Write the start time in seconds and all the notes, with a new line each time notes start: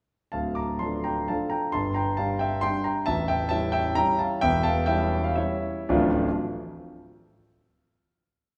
0.32 D1 D2 F5 A5
0.55 A#5 D6
0.79 F3 D4 A4 A5 C6
1.04 G5 A#5
1.28 F3 D4 A4 F5 A5
1.50 G5 A#5
1.72 G1 G2 A5 C6
1.95 G5 A#5
2.17 G3 D4 G4 F5 A5
2.39 E5 G5
2.61 G3 D4 G4 G5 C6
2.84 G5 A#5
3.06 A0 A1 E5 A5
3.28 E5 G5
3.49 G3 C#4 E4 E5 A5
3.72 E5 G5
3.95 G3 C#4 E4 G5 A#5
4.19 F5 A5
4.41 E1 E2 E5 G5
4.63 F5 A5
4.86 G3 C#4 E4 E5 G5
5.24 F5
5.36 G3 C#4 E4 C#5 E5
5.89 D1 A1 F3 A3 D4 F4 D5